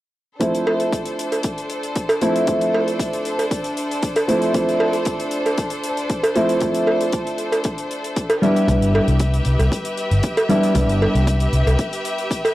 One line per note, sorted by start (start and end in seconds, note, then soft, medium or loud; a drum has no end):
0.40 2.18 F3 medium
0.40 2.18 A3 medium
0.40 2.19 C4 medium
0.40 8.38 D4 medium
0.40 2.19 E4 medium
0.40 8.38 A4 medium
0.40 8.38 C5 medium
0.40 kick loud
0.40 closed hi-hat medium
0.55 closed hi-hat soft
0.67 cowbell medium
0.80 closed hi-hat soft
0.93 kick loud
0.93 closed hi-hat medium
1.05 closed hi-hat soft
1.19 closed hi-hat medium
1.32 closed hi-hat medium
1.32 cowbell medium
1.43 kick loud
1.43 closed hi-hat medium
1.58 closed hi-hat soft
1.70 closed hi-hat medium
1.83 closed hi-hat soft
1.96 kick loud
1.96 closed hi-hat loud
2.09 closed hi-hat soft
2.09 cowbell medium
2.21 2.44 F3 medium
2.21 2.45 A3 medium
2.21 2.45 C4 medium
2.21 2.45 E4 medium
2.21 closed hi-hat medium
2.36 closed hi-hat medium
2.47 4.25 F3 medium
2.47 4.26 A3 medium
2.47 4.26 C4 medium
2.47 4.26 E4 medium
2.47 kick loud
2.47 closed hi-hat loud
2.61 closed hi-hat soft
2.74 cowbell medium
2.88 closed hi-hat soft
2.99 kick loud
2.99 closed hi-hat loud
3.13 closed hi-hat soft
3.25 closed hi-hat medium
3.39 closed hi-hat medium
3.39 cowbell medium
3.51 kick loud
3.51 closed hi-hat medium
3.64 closed hi-hat medium
3.77 closed hi-hat medium
3.91 closed hi-hat medium
4.03 kick loud
4.03 closed hi-hat medium
4.16 closed hi-hat medium
4.16 cowbell medium
4.28 4.51 F3 medium
4.28 4.51 A3 medium
4.28 4.51 C4 medium
4.28 4.52 E4 medium
4.28 closed hi-hat medium
4.42 closed hi-hat soft
4.53 6.32 F3 medium
4.53 6.32 A3 medium
4.53 6.33 C4 medium
4.53 6.33 E4 medium
4.53 kick loud
4.53 closed hi-hat medium
4.69 closed hi-hat soft
4.80 cowbell medium
4.93 closed hi-hat soft
5.05 kick loud
5.05 closed hi-hat medium
5.20 closed hi-hat soft
5.31 closed hi-hat medium
5.46 closed hi-hat medium
5.46 cowbell medium
5.58 kick loud
5.58 closed hi-hat medium
5.70 closed hi-hat medium
5.84 closed hi-hat medium
5.97 closed hi-hat soft
6.10 kick loud
6.10 closed hi-hat medium
6.23 closed hi-hat medium
6.23 cowbell medium
6.35 6.58 F3 medium
6.35 6.58 A3 medium
6.35 6.59 C4 medium
6.35 6.59 E4 medium
6.35 closed hi-hat medium
6.49 closed hi-hat soft
6.60 8.39 F3 medium
6.60 8.39 A3 medium
6.60 8.40 E4 medium
6.60 kick loud
6.60 closed hi-hat medium
6.74 closed hi-hat soft
6.87 cowbell medium
7.01 closed hi-hat medium
7.12 kick loud
7.12 closed hi-hat medium
7.27 closed hi-hat soft
7.38 closed hi-hat medium
7.52 closed hi-hat soft
7.52 cowbell medium
7.64 kick loud
7.64 closed hi-hat loud
7.78 closed hi-hat soft
7.91 closed hi-hat medium
8.04 closed hi-hat soft
8.16 kick loud
8.16 closed hi-hat medium
8.30 closed hi-hat medium
8.30 cowbell medium
8.42 8.65 G3 medium
8.42 8.65 B3 medium
8.42 8.66 D4 medium
8.42 8.66 E4 medium
8.42 12.54 G4 medium
8.42 12.54 B4 medium
8.42 12.54 E5 medium
8.42 closed hi-hat medium
8.56 closed hi-hat soft
8.68 8.82 C2 medium
8.68 10.46 G3 medium
8.68 10.46 B3 medium
8.68 10.47 D4 medium
8.68 10.47 E4 medium
8.68 kick loud
8.68 closed hi-hat medium
8.82 8.98 G1 medium
8.82 closed hi-hat soft
8.95 cowbell medium
9.08 9.39 C2 medium
9.08 closed hi-hat soft
9.20 kick loud
9.20 closed hi-hat medium
9.34 closed hi-hat soft
9.45 9.55 C2 medium
9.45 closed hi-hat medium
9.59 9.67 C2 medium
9.59 closed hi-hat soft
9.59 cowbell medium
9.72 kick loud
9.72 closed hi-hat medium
9.85 closed hi-hat medium
9.97 closed hi-hat medium
10.11 10.19 G1 medium
10.11 closed hi-hat medium
10.23 kick loud
10.23 closed hi-hat medium
10.37 closed hi-hat medium
10.37 cowbell medium
10.49 10.72 G3 medium
10.49 10.72 B3 medium
10.49 10.72 D4 medium
10.49 10.73 E4 medium
10.49 closed hi-hat medium
10.63 closed hi-hat medium
10.74 10.89 C2 medium
10.74 12.53 G3 medium
10.74 12.53 B3 medium
10.74 12.54 D4 medium
10.74 12.54 E4 medium
10.74 kick loud
10.74 closed hi-hat medium
10.89 11.05 G1 medium
10.89 closed hi-hat soft
11.02 cowbell medium
11.15 11.46 C2 medium
11.15 closed hi-hat soft
11.27 kick loud
11.27 closed hi-hat medium
11.40 closed hi-hat soft
11.53 11.62 C2 medium
11.53 closed hi-hat medium
11.67 11.74 C2 loud
11.67 closed hi-hat medium
11.67 cowbell medium
11.79 kick loud
11.79 closed hi-hat medium
11.93 closed hi-hat medium
12.05 closed hi-hat medium
12.18 closed hi-hat medium
12.31 kick loud
12.31 closed hi-hat medium
12.45 closed hi-hat soft
12.45 cowbell medium